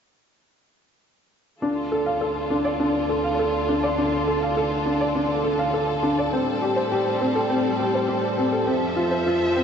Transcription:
1.61 6.28 D2 medium
1.61 6.28 D3 medium
1.61 1.76 D4 medium
1.61 6.28 F4 medium
1.61 9.64 A4 medium
1.92 2.00 A4 medium
2.06 2.15 F5 medium
2.21 2.35 A4 medium
2.50 2.64 D4 medium
2.65 2.79 D5 medium
2.80 2.94 D4 medium
3.09 3.18 A4 medium
3.24 3.32 F5 medium
3.39 3.53 A4 medium
3.69 3.82 D4 medium
3.83 3.97 D5 medium
3.98 4.12 D4 medium
4.27 4.35 A4 medium
4.42 4.50 F5 medium
4.57 4.71 A4 medium
4.86 5.00 D4 medium
5.01 5.14 D5 medium
5.15 5.29 D4 medium
5.44 5.53 A4 medium
5.59 5.67 F5 medium
5.74 5.88 A4 medium
6.03 6.17 D4 medium
6.19 6.32 D5 medium
6.32 8.65 A2 medium
6.32 8.65 G3 medium
6.32 8.65 C4 medium
6.32 6.47 C4 medium
6.62 6.70 G4 medium
6.76 6.85 C5 medium
6.92 7.05 G4 medium
7.21 7.35 C4 medium
7.35 7.49 A4 medium
7.50 7.64 C4 medium
7.80 7.88 G4 medium
7.94 8.03 C5 medium
8.08 8.23 G4 medium
8.38 8.52 C4 medium
8.52 8.67 A4 medium
8.67 9.64 F2 medium
8.67 9.64 F3 medium
8.67 8.81 C4 medium
8.67 9.64 E5 medium
8.96 9.05 F4 medium
9.11 9.20 C5 medium
9.26 9.40 F4 medium
9.56 9.64 C4 medium

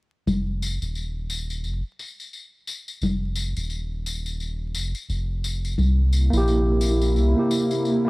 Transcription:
0.26 0.78 F1 loud
0.26 tambourine soft
0.26 low conga medium
0.62 tambourine medium
0.81 1.65 D#1 medium
0.81 tambourine soft
0.95 tambourine soft
1.30 tambourine medium
1.50 tambourine soft
1.64 1.82 F1 loud
1.64 tambourine soft
1.99 tambourine medium
2.20 tambourine soft
2.33 tambourine soft
2.67 tambourine medium
2.88 tambourine soft
3.01 3.53 F1 medium
3.01 tambourine soft
3.01 low conga soft
3.36 tambourine medium
3.56 4.76 D#1 medium
3.56 tambourine medium
3.70 tambourine soft
4.06 tambourine medium
4.26 tambourine soft
4.40 tambourine soft
4.75 4.93 F1 medium
4.75 tambourine medium
4.95 tambourine soft
5.09 5.75 F1 medium
5.09 tambourine soft
5.44 tambourine medium
5.65 tambourine soft
5.78 6.29 C2 medium
5.78 8.10 C3 medium
5.78 8.10 A#3 medium
5.78 8.10 E4 medium
5.78 tambourine soft
5.78 low conga medium
6.13 tambourine medium
6.30 7.18 A#1 medium
6.30 7.30 A#3 medium
6.30 7.32 E4 medium
6.30 tambourine medium
6.37 7.34 G4 medium
6.48 tambourine soft
6.81 tambourine medium
7.02 tambourine soft
7.16 7.34 C2 loud
7.16 tambourine soft
7.36 8.01 A#3 medium
7.36 8.01 E4 medium
7.36 8.02 G4 medium
7.51 tambourine medium
7.71 tambourine medium
7.85 tambourine soft
8.05 8.10 A#3 medium
8.05 8.10 E4 medium

